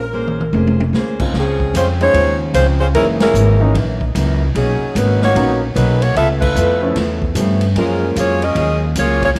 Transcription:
Already playing: upright bass A#1, saxophone section A#4
0.13 steel-string acoustic guitar A#3 C#4 G#4 C5
0.27 mid tom
0.41 mid tom
0.53 upright bass F1, steel-string acoustic guitar A#3 C#4 G#4 C5, high tom
0.67 high tom
0.80 high tom
0.93 upright bass D2, steel-string acoustic guitar A#3 C#4 G#4 C5, snare
1.20 grand piano C#3 G#3 C4 D#4 F4, kick, crash
1.33 upright bass C#2, steel-string acoustic guitar C#3 F3 G#3 C4, kick, snare
1.38 saxophone section F3 C4 C#4 G#4
1.60 kick
1.74 upright bass F2, steel-string acoustic guitar C#3 F3 G#3 C4, saxophone section G#3 C#4 F4 C5, kick, hi-hat pedal, ride
2.00 grand piano F3 G#3 C#4 D#4, saxophone section G#3 F4 C5 C#5, ride
2.14 upright bass D#2, steel-string acoustic guitar C#3 F3 G#3 C4, kick, ride
2.54 upright bass C#2, steel-string acoustic guitar C#3 F3 G#3 C4, saxophone section G#3 C#4 F4 C5, kick, hi-hat pedal, ride
2.80 saxophone section G#3 C#4 F4 C5
2.94 upright bass F#1, steel-string acoustic guitar F#2 E3 A#3 D#4, grand piano E3 G#3 A#3 C#4 D#4, saxophone section G#3 C#4 E4 A#4, kick, ride
3.20 saxophone section G#3 C#4 E4 A#4, snare, ride
3.34 upright bass G#1, steel-string acoustic guitar F#2 E3 A#3 D#4, hi-hat pedal
3.60 grand piano E3 G#3 A#3 C#4 D#4
3.74 upright bass A#1, steel-string acoustic guitar F#2 E3 A#3 D#4, kick, ride
4.01 kick
4.15 upright bass C#2, steel-string acoustic guitar F#2 E3 A#3 D#4, kick, hi-hat pedal, ride
4.55 upright bass B1, steel-string acoustic guitar B2 D#3 A#3 C#4, saxophone section F#3 C#4 D#4 G#4, kick, ride
4.81 muted upright bass stroke
4.95 upright bass G#1, steel-string acoustic guitar B2 D#3 A#3 C#4, saxophone section F#3 C#4 D#4 B4, kick, hi-hat pedal, ride
5.22 saxophone section A#3 D#4 F#4 C#5, snare
5.35 upright bass A#1, steel-string acoustic guitar B2 D#3 A#3 C#4, grand piano F#3 A#3 B3 C#4 D#4, kick, ride
5.74 upright bass B1, steel-string acoustic guitar B2 D#3 A#3 C#4, saxophone section F#3 C#4 D#4 B4, kick, hi-hat pedal, ride
6.01 saxophone section A#3 D#4 F#4 C#5, ride
6.15 upright bass C#2, steel-string acoustic guitar C#3 A3 B3 F4, saxophone section B3 F4 A4 E5, kick, ride
6.40 saxophone section A3 E4 F4 B4, kick, crash
6.55 upright bass F2, steel-string acoustic guitar C#3 A3 B3 F4, hi-hat pedal
6.82 grand piano F3 A3 B3 C#4 E4
6.96 upright bass E2, steel-string acoustic guitar C#3 A3 B3 F4, kick, snare, ride
7.22 kick
7.35 upright bass G2, steel-string acoustic guitar C#3 A3 B3 F4, grand piano F3 A3 B3 C#4 G4, kick, hi-hat pedal, ride
7.61 ride
7.75 upright bass F#2, grand piano F3 G#3 A#3 C#4 F4, steel-string acoustic guitar F#3 A#3 F4 G#4, saxophone section G#3 C#4 F4 A#4, kick, ride
8.15 upright bass F2, steel-string acoustic guitar F#3 A#3 F4 G#4, saxophone section A#3 F4 G#4 C#5, kick, hi-hat pedal, ride
8.42 saxophone section C#4 G#4 A#4 D#5, ride
8.55 upright bass D#2, steel-string acoustic guitar F#3 A#3 F4, kick, ride
8.59 steel-string acoustic guitar G#4
8.95 upright bass C#2, steel-string acoustic guitar F#3 A#3 F4 G#4, saxophone section A#3 F4 G#4 C#5, kick, hi-hat pedal, ride
9.22 saxophone section A#3 F4 G#4 C#5, kick, ride
9.35 upright bass C2, steel-string acoustic guitar C3, kick, ride

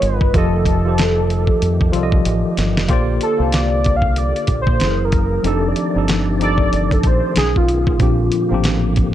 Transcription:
Already playing: tonewheel organ D#3 B3 F4, tine electric piano G3 F4 A#4 B4 C#5 D#5
0.02 fingered electric bass G1, soft synth lead B4, closed hi-hat
0.21 kick
0.33 fingered electric bass F1, tine electric piano F3 F4 G4 A4, tonewheel organ A3 G4, soft synth lead A4, kick, closed hi-hat
0.38 tine electric piano D#5
0.66 kick, closed hi-hat
0.84 tine electric piano F3 F4 G4 A4
0.89 tine electric piano C5
0.98 snare, closed hi-hat
1.30 closed hi-hat
1.47 kick
1.62 fingered electric bass F2, closed hi-hat
1.81 kick
1.92 fingered electric bass C2, tine electric piano F3 F4 G4 A4, closed hi-hat
1.97 tine electric piano D5
2.03 tine electric piano D#5
2.12 kick
2.25 fingered electric bass A1, closed hi-hat
2.57 fingered electric bass G1, snare, closed hi-hat
2.76 fingered electric bass F1, snare
2.88 fingered electric bass A#1, tonewheel organ D3 A#3 G4, tine electric piano A#3 F4 G4 C5, kick, closed hi-hat
2.93 tine electric piano D5
3.21 soft synth lead A4, closed hi-hat
3.38 fingered electric bass C2, tine electric piano A#3 F4 G4 C5
3.43 tine electric piano F5
3.52 soft synth lead D5, snare, closed hi-hat
3.84 kick, closed hi-hat
3.96 soft synth lead F5
4.02 kick
4.16 soft synth lead D5, closed hi-hat
4.36 closed hi-hat
4.47 fingered electric bass A#1, kick, closed hi-hat
4.62 soft synth lead C5
4.67 fingered electric bass A#2, kick
4.79 fingered electric bass F#1, tonewheel organ E3 G#4, tine electric piano F#3 C#4 E4 G#4, snare, closed hi-hat
4.84 tine electric piano A4
4.90 tine electric piano A#4
5.05 soft synth lead A#4
5.12 kick, closed hi-hat
5.43 fingered electric bass F1, tonewheel organ D#3 A3 G4 D5, tine electric piano F3 C4 D4 D#4 G4, soft synth lead A4, closed hi-hat
5.47 tine electric piano A4
5.68 soft synth lead D5
5.76 closed hi-hat
5.93 fingered electric bass G1, tine electric piano F3 C4 D4 D#4 G4
5.98 tine electric piano A4
6.08 snare, closed hi-hat
6.39 tine electric piano F3 C4 D4 D#4 G4, soft synth lead D5, closed hi-hat
6.43 tine electric piano A4
6.58 kick
6.73 fingered electric bass G1, closed hi-hat
6.91 soft synth lead A4, kick, closed hi-hat
7.03 fingered electric bass A#1, soft synth lead C5, kick, closed hi-hat
7.34 fingered electric bass B1, tine electric piano B2 F#3 C#4 D#4, tonewheel organ B3 G#4, soft synth lead G#4, snare, closed hi-hat
7.39 tine electric piano G#4
7.56 soft synth lead F4, kick
7.68 closed hi-hat
7.87 kick
7.98 fingered electric bass A#1, tine electric piano A#2 F3 C4 D4, tonewheel organ D3 A#3 G4, kick, closed hi-hat
8.03 tine electric piano G4
8.32 closed hi-hat
8.49 fingered electric bass A1, tine electric piano F3 A#3 C4 D4
8.54 tine electric piano G4
8.64 snare, closed hi-hat
8.96 kick, closed hi-hat

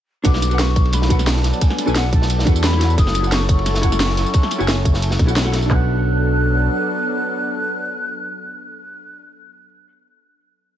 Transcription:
0.24 analog synth bass B1, analog synth pad F#3 B3 D4 A4, hollow-body jazz guitar D4 F#4 A4 B4 F#5, flute D6, kick, closed hi-hat, ride, tambourine
0.34 snare
0.42 snare, closed hi-hat, ride, tambourine
0.48 hollow-body jazz guitar D4 F#4 A4, ride, tambourine
0.53 hollow-body jazz guitar B4 F#5
0.59 flute C#6, snare, closed hi-hat, ride, tambourine
0.76 kick, closed hi-hat, ride, tambourine
0.85 ride
0.93 flute B5, snare, closed hi-hat, ride, tambourine
1.02 snare
1.09 hollow-body jazz guitar D4 F#4 A4 B4 F#5, kick, closed hi-hat, ride, tambourine
1.19 snare, tambourine
1.27 flute A5, snare, closed hi-hat, ride, tambourine
1.36 snare
1.44 snare, closed hi-hat, ride
1.53 tambourine
1.61 flute G#5, kick, closed hi-hat, ride, tambourine
1.70 snare
1.78 snare, closed hi-hat, ride, tambourine
1.86 analog synth bass B1, hollow-body jazz guitar D4 F#4 A4 B4 G#5, tambourine
1.95 flute F#5, snare, closed hi-hat, ride, tambourine
2.13 flute A5, kick, closed hi-hat, ride, tambourine
2.22 snare
2.30 closed hi-hat, ride, tambourine
2.39 snare
2.45 analog synth bass E2, hollow-body jazz guitar D4 F#4 A4 B4 F#5, kick, closed hi-hat, ride, tambourine
2.56 tambourine
2.63 flute B5, snare, closed hi-hat, ride, tambourine
2.73 snare
2.77 hollow-body jazz guitar E4 F#4 A4, snare, closed hi-hat, ride
2.82 hollow-body jazz guitar C#5 F#5
2.90 tambourine
2.98 analog synth bass F#1, analog synth pad F#3 C#4 E4, flute D#6, kick, closed hi-hat, ride, tambourine
3.07 snare
3.15 snare, closed hi-hat, ride, tambourine
3.21 hollow-body jazz guitar E4 F#4 A4, ride, tambourine
3.25 hollow-body jazz guitar C#5 F#5
3.32 flute C#6, snare, closed hi-hat, ride, tambourine
3.49 flute C#6, kick, closed hi-hat, ride, tambourine
3.59 ride
3.66 snare, closed hi-hat, ride, tambourine
3.74 snare
3.82 hollow-body jazz guitar E4 F#4 A4 C#5 F#5, kick, closed hi-hat, ride, tambourine
3.92 snare, tambourine
4.00 snare, closed hi-hat, ride, tambourine
4.09 snare
4.17 snare, closed hi-hat, ride
4.26 tambourine
4.34 kick, closed hi-hat, ride, tambourine
4.43 snare
4.51 snare, closed hi-hat, ride, tambourine
4.59 analog synth bass F#1, hollow-body jazz guitar E4 F#4 A4 C#5 G#5, tambourine
4.68 snare, closed hi-hat, ride, tambourine
4.85 kick, closed hi-hat, ride, tambourine
4.94 snare
5.02 closed hi-hat, ride, tambourine
5.11 snare
5.19 analog synth bass B1, kick, closed hi-hat, ride, tambourine
5.27 hollow-body jazz guitar E4 F#4 A4 C#5 F#5, tambourine
5.36 snare, closed hi-hat, ride, tambourine
5.44 hollow-body jazz guitar E4 F#4 A4 C#5 F#5, snare
5.53 snare, closed hi-hat, ride
5.62 hollow-body jazz guitar D4, tambourine
5.68 analog synth bass B1, analog synth pad F#3 B3 D4 A4, hollow-body jazz guitar F#4 A4, flute F#6, kick, clap, floor tom
5.73 hollow-body jazz guitar B4 F#5

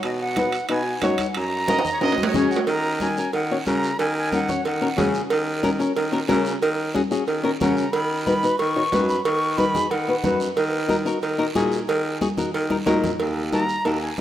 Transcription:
0.03 baritone saxophone B2, flute D#5, high conga, high timbale, long guiro
0.21 flute F#5
0.36 nylon-string guitar D#4 F#4 B4, high conga, high timbale, short guiro
0.52 high timbale, short guiro
0.69 baritone saxophone B2, nylon-string guitar D#4 F#4 B4, flute G#5, high conga, high timbale, long guiro
1.02 baritone saxophone F#2, nylon-string guitar D#4 F#4 C#5, flute F#5, high conga, high timbale, low timbale, short guiro
1.18 high conga, high timbale, short guiro
1.35 baritone saxophone F#2, flute A#5, high conga, high timbale, long guiro
1.68 nylon-string guitar C#4 F#4 A#4, trumpet D#5, high conga, high timbale, short guiro
1.79 high timbale
1.85 low conga, short guiro
1.93 trumpet C#5
2.01 baritone saxophone F#2, nylon-string guitar C#4 F#4 A#4, trumpet D#5, high conga, high timbale, long guiro
2.12 low timbale
2.18 high conga
2.23 trumpet C#5, low timbale
2.34 baritone saxophone C#3, nylon-string guitar C#4 F#4 G#4, trumpet C#5, flute G#5, high conga, low conga, short guiro
2.51 flute F#5, short guiro
2.56 low timbale
2.67 baritone saxophone D#3, flute A#5, cowbell, high conga, long guiro
3.00 nylon-string guitar C#4 F#4 A#4, flute G#5, high conga, short guiro
3.17 nylon-string guitar C#4 F#4 A#4, short guiro
3.33 baritone saxophone D#3, flute F#5, cowbell, high conga, long guiro
3.51 nylon-string guitar C#4 F#4 C#5
3.66 baritone saxophone C#3, nylon-string guitar C#4 F#4 A#4, flute A#5, high conga, short guiro
3.83 short guiro
3.99 baritone saxophone D#3, flute G#5, cowbell, high conga, long guiro
4.18 flute G#5
4.32 nylon-string guitar C#4 F#4 A#4, flute F#5, high conga, short guiro
4.49 nylon-string guitar C#4 F#4 C#5, low conga, short guiro
4.65 baritone saxophone D#3, flute F#5, cowbell, long guiro
4.81 nylon-string guitar C#4 F#4 A#4
4.97 baritone saxophone C#3, nylon-string guitar C#4 F#4 G#4, high conga, low conga, low timbale, short guiro
5.14 short guiro
5.30 baritone saxophone D#3, cowbell, high conga, long guiro
5.63 nylon-string guitar C#4 F#4 A#4, high conga, short guiro
5.79 nylon-string guitar C#4 F#4 A#4, short guiro
5.96 baritone saxophone D#3, cowbell, high conga, long guiro
6.12 nylon-string guitar C#4 F#4 A#4
6.28 baritone saxophone C#3, nylon-string guitar C#4 F#4 A#4, high conga, low timbale, short guiro
6.45 short guiro
6.62 baritone saxophone D#3, cowbell, high conga, long guiro
6.94 nylon-string guitar C#4 F#4 G#4, high conga, short guiro
7.11 nylon-string guitar C#4 F#4 G#4, short guiro
7.27 baritone saxophone D#3, cowbell, high conga, long guiro
7.43 nylon-string guitar C#4 F#4 A#4
7.60 baritone saxophone C#3, nylon-string guitar C#4 F#4 A#4, flute F#5, high conga, low conga, short guiro
7.77 flute A#5, short guiro
7.92 baritone saxophone D#3, flute B5, cowbell, high conga, long guiro
8.25 nylon-string guitar D#4 F#4 B4, flute B5, high conga, short guiro
8.43 nylon-string guitar D#4 F#4 B4, short guiro
8.58 baritone saxophone D#3, flute C#6, cowbell, high conga, long guiro
8.76 nylon-string guitar D#4 F#4 C#5
8.92 baritone saxophone F#2, nylon-string guitar D#4 F#4 B4, high conga, low timbale, short guiro
9.09 flute B5, short guiro
9.24 baritone saxophone D#3, flute C#6, cowbell, high conga, long guiro
9.58 nylon-string guitar D#4 F#4 B4, flute B5, high conga, short guiro
9.74 nylon-string guitar D#4 F#4 G#4, low conga, short guiro
9.91 baritone saxophone D#3, flute F#5, cowbell, high conga, long guiro
10.08 nylon-string guitar D#4 F#4 B4
10.23 baritone saxophone F#2, nylon-string guitar D#4 F#4 B4, high conga, low conga, short guiro
10.40 short guiro
10.57 baritone saxophone D#3, cowbell, high conga, long guiro
10.88 nylon-string guitar D#4 F#4 A#4, high conga, short guiro
11.05 nylon-string guitar D#4 F#4 A#4, short guiro
11.22 baritone saxophone D#3, cowbell, high conga, long guiro
11.38 nylon-string guitar D#4 F#4 A#4
11.55 baritone saxophone A#2, nylon-string guitar D#4 F#4 G#4, high conga, short guiro
11.72 short guiro
11.88 baritone saxophone D#3, cowbell, high conga, long guiro
12.21 nylon-string guitar D#4 F#4 G#4, high conga, short guiro
12.37 nylon-string guitar D#4 F#4 A#4, low conga, short guiro
12.54 baritone saxophone D#3, cowbell, high conga, long guiro
12.70 nylon-string guitar D#4 F#4 A#4, high conga
12.86 baritone saxophone A#2, nylon-string guitar D#4 F#4 A#4, high conga, low timbale, short guiro
13.04 low conga, short guiro
13.20 baritone saxophone D#2, cowbell, high conga, long guiro
13.52 nylon-string guitar D#4 F#4 A#4, flute A#5, high conga, short guiro
13.69 short guiro
13.85 baritone saxophone D#2, nylon-string guitar D#4 F#4 A#4, flute A5, cowbell, high conga, long guiro
14.02 flute G#5
14.18 short guiro

